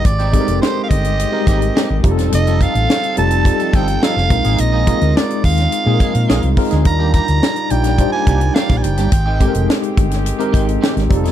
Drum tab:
HH |xxxx--xxx-xx--xx|xxxx-xxxxxxx--xx|x-xx-xoxx-xx-xox|x-xx-xxxx-xx-xxx|
SD |----o-------o--o|----o-------oo--|----o--o----o--o|----o--o----oo-o|
BD |o-o---o---o---o-|--o-----o-o---o-|--o---o---o---o-|o-o-----o-o--o--|

HH |x-xx-xxxxxxx-xxx|
SD |----o--o----oo-o|
BD |o-o---o---o---o-|